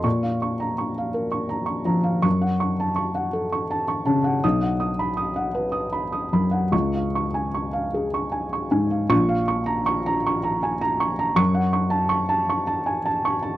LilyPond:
<<
  \new Staff \with { instrumentName = "Felt piano" } { \time 3/4 \key bes \phrygian \tempo 4 = 80 << { des'''8 r2 r8 | des'''8 r2 r8 | dis'''8 r2 r8 | des'''8 r2 r8 |
des'''8 r2 r8 | des'''8 r2 r8 | } \\ { r16 f''16 des'''16 bes''16 des'''16 f''16 bes'16 des'''16 bes''16 des'''16 bes''16 f''16 | r16 ges''16 des'''16 a''16 des'''16 ges''16 a'16 des'''16 a''16 des'''16 a''16 ges''16 | r16 fis''16 dis'''16 b''16 dis'''16 fis''16 b'16 dis'''16 b''16 dis'''16 b''16 fis''16 | r16 f''16 des'''16 aes''16 des'''16 f''16 aes'16 des'''16 aes''16 des'''16 aes''16 f''16 |
r16 f''16 des'''16 bes''16 des'''16 bes''16 des'''16 bes''16 aes''16 bes''16 des'''16 bes''16 | r16 ges''16 des'''16 a''16 des'''16 a''16 des'''16 a''16 aes''16 a''16 des'''16 a''16 | } >> }
  \new Staff \with { instrumentName = "Felt piano" } { \clef bass \time 3/4 \key bes \phrygian bes,2~ bes,8 f8 | ges,2~ ges,8 des8 | b,,2~ b,,8 fis,8 | des,2~ des,8 aes,8 |
bes,,2. | ges,2. | }
>>